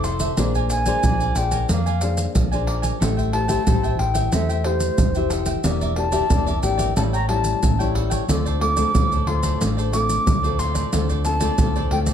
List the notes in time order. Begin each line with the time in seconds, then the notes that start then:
Already playing: F1 C3 E4 A4 C5
0.04 F4 A4 C5 E5 C6, pandeiro, maracas
0.20 A4 C5 E5, pandeiro, maracas, surdo
0.37 A#1 A#3 D4 G#4 A#4 C5 D5 G#5, pandeiro, maracas, surdo
0.55 A#4 D5 G#5, pandeiro, maracas, surdo
0.70 G#5, muted cavaquinho stroke, pandeiro, maracas
0.86 D4 G#4 A#4 C5 D5 G#5, pandeiro, maracas, surdo
1.03 A#1 F3 D4 A#4 D5 G#5, pandeiro, maracas, surdo
1.20 A#4 D5 G#5, pandeiro, maracas
1.35 A#1 D4 G#4 C5 G5, pandeiro, maracas
1.51 A#4 D5 G#5, pandeiro, maracas, surdo
1.69 F2 A#3 D4 A#4 D5 F5 G#5, pandeiro, maracas, surdo
1.86 A#4 D5 G#5, pandeiro, maracas
2.01 D4 G#4 C5, muted cavaquinho stroke, pandeiro, maracas
2.17 pandeiro, maracas
2.35 A#1 F3, pandeiro, maracas, surdo
2.51 D4 G#4 A#4 C5 D5 G#5, pandeiro, maracas
2.67 D4 A#4 D5 G#5, pandeiro
2.82 A#4 D5 G#5, pandeiro, maracas, surdo
3.00 A1 A3 E4 G4 A4 C5 E5 G5, pandeiro, maracas, surdo
3.17 C5 E5 G5, pandeiro, maracas, surdo
3.32 E4 G4 C5 A5, muted cavaquinho stroke, pandeiro
3.48 E4 G4 C5 E5 G5, pandeiro, maracas, surdo
3.66 A1 E3 E4 G4 A4 C5 E5 G5, pandeiro, maracas, surdo
3.83 C5 E5 G5, pandeiro, maracas
3.98 A1 E4 G4 C5 G5, pandeiro
4.14 C5 E5 G5, pandeiro, maracas, surdo
4.32 E2 A3 A4 C5 E5 G5, pandeiro, maracas, surdo
4.49 C5 E5 G5, pandeiro, maracas
4.64 E4 G4 C5, muted cavaquinho stroke, pandeiro
4.80 pandeiro, maracas
4.98 F1 E3, pandeiro, maracas, surdo
5.15 E4 G4 C5 E5 G5, pandeiro, maracas
5.30 A4 C5 E5 G5, pandeiro, maracas
5.46 C5 E5 G5, pandeiro, maracas, surdo
5.64 E1 E3 A#3 D4 G4 A#4 D5 E5, pandeiro, maracas, surdo
5.81 A#4 D5 E5, pandeiro, maracas, surdo
5.96 A#3 D4 G4 A5, muted cavaquinho stroke, pandeiro
6.12 A#3 D4 G4 A#4 D5 E5, pandeiro, maracas, surdo
6.29 E1 E3 A#3 D4 G4 A#4 D5 E5, pandeiro, maracas, surdo
6.46 A#4 D5 E5, pandeiro, maracas
6.62 G#1 A#3 D4 G4 G5, pandeiro, maracas
6.77 A#4 D5 E5, pandeiro, maracas, surdo
6.96 A1 A2 G3 C#4 E4 A4 C#5 G5 A5, pandeiro, maracas, surdo
7.13 A4 C#5 G5 A#5, pandeiro, maracas
7.29 G3 C#4 E4 A5, muted cavaquinho stroke, pandeiro
7.44 pandeiro, maracas
7.62 A1 E3, pandeiro, maracas, surdo
7.79 G3 C#4 E4 A4 C#5 G5, pandeiro, maracas
7.94 E4 A4 C#5 G5, pandeiro, surdo
8.10 A4 C#5 G5, pandeiro, maracas, surdo
8.28 D2 D3 A3 C4 F4 A4 C5 D5, pandeiro, maracas, surdo
8.45 A4 C5 D5, pandeiro, maracas, surdo
8.60 A3 C4 F4 D6, muted cavaquinho stroke, pandeiro
8.76 A3 C4 F4 A4 C5 D5, pandeiro, maracas, surdo
8.94 D2 A2 A3 C4 F4 A4 C5 D5, pandeiro, maracas, surdo
9.11 A4 C5 D5, pandeiro, maracas
9.26 D2 A3 C4 F4 C6, pandeiro
9.42 A4 C5 D5, pandeiro, maracas, surdo
9.60 A1 D3 F4 A4 C5 D5, pandeiro, maracas, surdo
9.77 A4 C5 D5, pandeiro, maracas
9.93 A3 C4 F4 D6, muted cavaquinho stroke, pandeiro, maracas
10.09 pandeiro, maracas
10.26 D2 A2, pandeiro, maracas, surdo
10.43 A3 C4 F4 A4 C5 D5, pandeiro, maracas
10.58 F4 A4 C5 D5 C6, pandeiro, maracas, surdo
10.74 A4 C5 D5, pandeiro, maracas, surdo
10.92 D2 D3 A3 C4 F4 A4 C5 D5, pandeiro, maracas, surdo
11.09 A4 C5 D5, pandeiro, maracas, surdo
11.24 A3 C4 F4 A5, muted cavaquinho stroke, pandeiro, maracas
11.40 A3 C4 F4 A4 C5 D5, pandeiro, maracas, surdo
11.58 D2 A2 A3 C4 F4 A4 C5 D5, pandeiro, maracas, surdo
11.76 A4 C5 D5, pandeiro, maracas
11.90 D2 A3 C4 F4 G5, pandeiro
12.06 A4 C5 D5, pandeiro, maracas, surdo